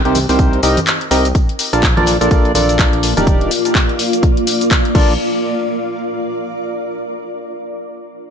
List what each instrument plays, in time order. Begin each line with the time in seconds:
0.05 analog synth bass C2, synth stab C4 D#4 G4 A#4 C5, closed hi-hat
0.15 open hi-hat, tambourine, high conga, shaker
0.29 analog synth bass C2, synth stab C4 D#4 G4 A#4 C5, open hi-hat, tambourine, shaker
0.39 kick, closed hi-hat, tambourine, shaker
0.53 closed hi-hat
0.63 analog synth bass C2, synth stab C4 D#4 G4 A#4 D#5, open hi-hat, tambourine, shaker
0.77 closed hi-hat, tambourine, high conga, shaker
0.87 clap, closed hi-hat, shaker
1.01 closed hi-hat
1.11 analog synth bass C2, synth stab C4 D#4 G4 A#4 D#5, open hi-hat, tambourine, shaker
1.25 closed hi-hat, tambourine, shaker
1.35 ambient pad F4, kick, closed hi-hat, tambourine, shaker
1.49 closed hi-hat
1.59 open hi-hat, tambourine, shaker
1.73 analog synth bass A#1, ambient pad A#3, synth stab D4 F4 A4 A#4 D5, closed hi-hat, tambourine, shaker
1.83 kick, clap, closed hi-hat, tambourine, shaker
1.97 analog synth bass A#1, synth stab D4 F4 A4 A#4 D5, closed hi-hat, high conga
2.06 open hi-hat, tambourine, shaker
2.21 analog synth bass A#1, synth stab D4 F4 A4 A#4 D5, ambient pad D5, closed hi-hat, tambourine, shaker
2.31 analog synth bass A#1, synth stab D4 F4 A4 A#4 D5, kick, closed hi-hat, tambourine, shaker
2.45 closed hi-hat
2.54 analog synth bass A#1, synth stab D4 F4 A4 A#4 D5, open hi-hat, tambourine, high conga, shaker
2.69 closed hi-hat, tambourine, shaker
2.79 kick, clap, closed hi-hat, shaker
2.93 closed hi-hat
3.03 open hi-hat, tambourine, shaker
3.17 analog synth bass D#1, synth stab D4 D#4 G4 A#4 D5, closed hi-hat, tambourine, high conga, shaker
3.27 kick, closed hi-hat, shaker
3.41 closed hi-hat
3.51 open hi-hat, shaker
3.65 closed hi-hat, shaker
3.75 kick, clap, closed hi-hat, shaker
3.89 closed hi-hat
3.99 open hi-hat, shaker
4.13 closed hi-hat, shaker
4.23 kick, closed hi-hat, shaker
4.37 closed hi-hat
4.47 open hi-hat, shaker
4.61 closed hi-hat, shaker
4.71 kick, clap, closed hi-hat, shaker
4.85 closed hi-hat
4.95 analog synth bass A#1, synth stab D4 F4 A4 A#4 D5, ambient pad F4, kick, crash
5.03 ambient pad A#4
5.35 ambient pad D5